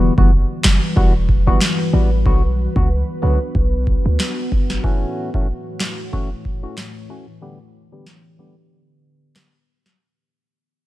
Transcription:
Already playing: E3 G3 B3 F#4 B4
0.18 F#1 E3 G3 B3 F#4, kick
0.64 F#1, snare, clap
0.96 E1 E3 G3 B3 F#4, kick
1.29 kick
1.47 G1 E3 G3 B3 F#4
1.61 snare, clap
1.93 A1 E3 G3 B3 F#4
2.26 B1 D3 F#3 B3 D4 F#4, kick
2.76 C#2 D3 F#3 B3 F#4, kick
3.22 C#2 D3 F#3 B3 F#4
3.55 B1, kick
3.87 kick
4.06 D2
4.20 snare, clap
4.52 G1, kick
4.70 snare
4.84 A2 E3 A3 C#4 F#4 C#5, kick
5.34 A2 E3 A3 C#4 F#4, kick
5.80 snare, clap
6.12 A2 E3 A3 C#4 F#4, kick
6.45 kick
6.63 A2 E3 A3 C#4 F#4
6.78 snare, clap
7.09 A2 E3 A3 C#4 F#4
7.42 D3 G3 B3 G4 D5
7.92 D3 G3 B3 G4
8.06 snare
8.38 D3 G3 B3 G4
9.36 cross-stick, snare, clap
9.86 snare

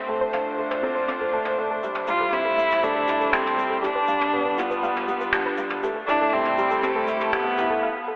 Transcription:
Already playing: D3 G4 C5
0.08 A3 D4 A4
0.21 C5
0.33 D4 F5, mid tom
0.41 F4
0.58 A3 A4
0.71 C5, mid tom
0.83 C4 A4
0.95 C5
1.08 C4 D6, mid tom
1.21 A4
1.33 A3 A5
1.45 mid tom
1.58 A3 C5
1.71 A4
1.83 G3 A3 E5, shaker
1.95 mid tom
2.07 G3 F4 G4, shaker
2.14 E4
2.21 A4
2.33 C4 E4 G4, mid tom
2.45 A4
2.58 G3 E5, shaker
2.71 G4, mid tom, shaker
2.83 A3 D4 G4, shaker
2.96 A4
3.08 E4 G4, mid tom, shaker
3.21 A4, shaker
3.33 G3 C4 E5, finger snap, shaker
3.47 mid tom
3.57 G3 G4, shaker
3.70 A4
3.83 G3 D4 G4, mid tom, shaker
3.95 B4
4.08 G3 F5, shaker
4.21 mid tom
4.33 B3 G4
4.46 D4 B4
4.58 B3 F4 G4, mid tom, shaker
4.71 F4 B4, shaker
4.83 G3 F5, shaker
4.96 mid tom
5.08 G3 G4, shaker
5.21 B4, shaker
5.33 D4 G4, finger snap, mid tom, shaker
5.46 B4
5.57 G3 F5, shaker
5.70 mid tom
5.83 A3 G4, shaker
5.96 A4
6.08 D4 E4 G4, mid tom, shaker
6.21 A4
6.33 G3 C4 E5
6.45 mid tom
6.53 E4
6.58 G3 G4, shaker
6.71 A4, shaker
6.83 A3 C4 G4, mid tom, shaker
6.96 A4
7.08 G3 E5, shaker
7.21 mid tom, shaker
7.33 A3 B3 G4, finger snap, shaker
7.45 A4
7.58 E4 G4, mid tom, shaker
7.70 A4
7.83 F5
8.08 A4

